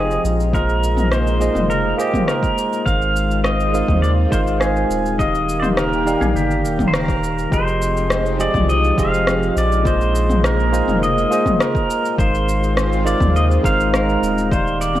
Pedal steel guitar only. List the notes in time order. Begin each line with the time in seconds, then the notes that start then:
Already playing: G#4
0.54 A#4
1.12 C5
1.70 A#4
1.98 G4
2.27 A#4
2.86 F5
3.44 D#5
4.02 D5
4.32 C5
4.60 G#4
5.19 D#5
5.60 C5 D5
5.77 A#4
6.21 G#4
6.36 G4
6.88 C5
6.96 A#4
7.54 C5
8.41 D5
8.70 D#5
8.99 F5
9.58 D5
9.87 C5
10.45 A#4
11.03 D#5
11.61 A#4
12.19 C5
13.07 D5
13.36 D#5
13.65 F5
13.94 A#4
14.52 C5
14.81 D5